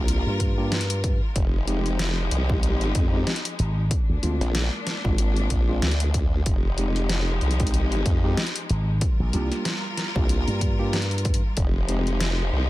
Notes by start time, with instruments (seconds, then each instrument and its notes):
Already playing: wobble bass C2, string section G3 F4 A#4, tine electric piano A#3 D4 F4 G4
0.08 closed hi-hat
0.27 slap bass G2
0.40 kick, closed hi-hat
0.58 tine electric piano A#3 D4 F4 G4
0.72 snare, closed hi-hat
0.81 closed hi-hat
0.90 closed hi-hat
1.04 kick, closed hi-hat
1.36 wobble bass F1, string section F3 G#3 D#4 G4, kick, closed hi-hat
1.67 tine electric piano G#3 C4 D#4 G4, closed hi-hat
1.86 closed hi-hat
1.99 snare, closed hi-hat
2.31 wobble bass C2, closed hi-hat
2.49 tine electric piano G#3 C4 D#4 G4, kick
2.63 closed hi-hat
2.81 closed hi-hat
2.95 wobble bass F2, kick, closed hi-hat
3.13 tine electric piano G#3 C4 D#4 G4
3.27 snare, closed hi-hat
3.36 closed hi-hat
3.45 closed hi-hat
3.59 slap bass G#1, closed hi-hat
3.91 string section G#3 A#3 D4, kick, closed hi-hat
4.09 slap bass D2
4.23 slap bass D2, tine electric piano G#3 C4 D4 F4, closed hi-hat
4.40 wobble bass A#1, snare, closed hi-hat
4.55 snare, closed hi-hat
4.87 snare, closed hi-hat
5.04 wobble bass G#1, tine electric piano G#3 C4 D4 F4, kick
5.18 closed hi-hat
5.36 closed hi-hat
5.50 wobble bass A#1, kick, closed hi-hat
5.69 tine electric piano G#3 C4 D4 F4
5.82 wobble bass D2, snare, closed hi-hat
5.91 closed hi-hat
6.00 closed hi-hat
6.14 kick, closed hi-hat
6.46 wobble bass F1, string section F3 G#3 D#4 G4, kick, closed hi-hat
6.78 tine electric piano G#3 C4 D#4 G4, closed hi-hat
6.96 closed hi-hat
7.09 snare, closed hi-hat
7.41 wobble bass C2, closed hi-hat
7.51 closed hi-hat
7.60 tine electric piano G#3 C4 D#4 G4, kick, closed hi-hat
7.67 closed hi-hat
7.74 closed hi-hat
7.92 closed hi-hat
8.06 wobble bass F2, kick, closed hi-hat
8.24 tine electric piano G#3 C4 D#4 G4
8.37 snare, closed hi-hat
8.47 closed hi-hat
8.56 closed hi-hat
8.70 slap bass G#1, closed hi-hat
9.01 string section G3 F4 A#4, kick, closed hi-hat
9.20 slap bass A#1
9.33 slap bass C2, tine electric piano A#3 D4 F4 G4, closed hi-hat
9.52 snare, closed hi-hat
9.65 snare, closed hi-hat
9.97 snare, closed hi-hat
10.16 wobble bass C2, tine electric piano A#3 D4 F4 G4, kick
10.29 closed hi-hat
10.48 slap bass G2, closed hi-hat
10.61 kick, closed hi-hat
10.79 tine electric piano A#3 D4 F4 G4
10.93 snare, closed hi-hat
11.02 closed hi-hat
11.11 closed hi-hat
11.18 closed hi-hat
11.25 kick, closed hi-hat
11.34 closed hi-hat
11.57 wobble bass F1, string section F3 G#3 D#4 G4, kick, closed hi-hat
11.89 tine electric piano G#3 C4 D#4 G4, closed hi-hat
12.07 closed hi-hat
12.21 snare, closed hi-hat
12.53 wobble bass C2